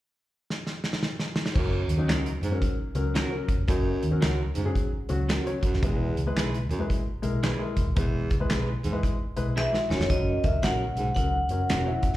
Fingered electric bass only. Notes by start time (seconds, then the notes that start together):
1.56 F#1
1.88 D#2
2.08 C#2
2.42 F#2
2.79 muted fingered electric bass stroke
2.95 C#2
3.48 F#1
3.58 F1
3.68 F#1
4.03 D#2
4.22 C#2
4.57 F#2
4.93 muted fingered electric bass stroke
5.10 C#2
5.63 F#1
5.73 D#1
5.83 E1
6.17 C#2
6.36 B1
6.70 E2
7.07 muted fingered electric bass stroke
7.24 B1
7.77 E1
7.87 D#1
7.97 E1
8.31 C#2
8.49 B1
8.84 E2
9.21 muted fingered electric bass stroke
9.37 B1
9.90 E1
10.00 F1
10.10 F#1
10.44 C#2
10.62 A#1
10.95 B1
11.16 C#2
11.49 F#2
11.69 E1
12.03 F1